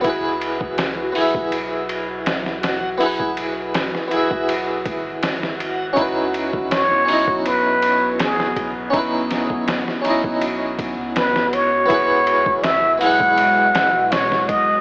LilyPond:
<<
  \new Staff \with { instrumentName = "Muted trumpet" } { \time 4/4 \key e \major \tempo 4 = 81 r1 | r1 | r4 cis''4 b'4 gis'8. r16 | r2. b'8 cis''8~ |
cis''4 e''8 fis''4. cis''8 dis''8 | }
  \new Staff \with { instrumentName = "Synth texture" } { \time 4/4 \key e \major fis'1~ | fis'1~ | fis'1~ | fis'1~ |
fis'1 | }
  \new Staff \with { instrumentName = "Harpsichord" } { \time 4/4 \key e \major <b e' gis' b'>4. <b e' gis' e''>2~ <b e' gis' e''>8 | <b e' gis' b'>4. <b e' gis' e''>2~ <b e' gis' e''>8 | <cis' dis' e' b'>4. <cis' dis' e' dis''>2~ <cis' dis' e' dis''>8 | <cis' dis' e' b'>4. <cis' dis' e' dis''>2~ <cis' dis' e' dis''>8 |
<b e' gis' b'>4. <b e' gis' b'>2~ <b e' gis' b'>8 | }
  \new Staff \with { instrumentName = "Ambient pad" } { \clef bass \time 4/4 \key e \major r1 | r1 | b1~ | b1 |
<b, gis>1 | }
  \new Staff \with { instrumentName = "Sub bass" } { \clef bass \time 4/4 \key e \major cis,4. b,,2~ b,,8~ | b,,4~ b,,16 r16 b,,4 gis,,4. | cis,4. b,,2~ b,,8~ | b,,4~ b,,16 r16 b,,4~ b,,16 cis,4~ cis,16 |
cis,4. b,,2~ b,,8 | }
  \new DrumStaff \with { instrumentName = "Drums" } \drummode { \time 4/4 <bd cymr>8 cymr16 bd16 <cymr sn>8 hho16 bd16 cymr8 cymr8 <cymr sn>16 sn16 <cymr sn>8 | hho16 bd16 cymr8 <cymr sn>16 sn16 cymr16 bd16 cymr8 <bd cymr>8 <cymr sn>16 sn16 cymr8 | <bd cymr>8 cymr16 bd16 <cymr sn>8 hho16 bd16 cymr8 cymr8 <cymr sn>16 sn16 <bd cymr>8 | <bd cymr>8 <cymr sn>16 bd16 <cymr sn>16 sn16 cymr16 bd16 cymr8 <bd cymr>8 <cymr sn>16 sn16 cymr8 |
<bd cymr>8 cymr16 bd16 <cymr sn>8 hho16 bd16 cymr8 <cymr sn>8 <cymr sn>16 sn16 <bd cymr>8 | }
>>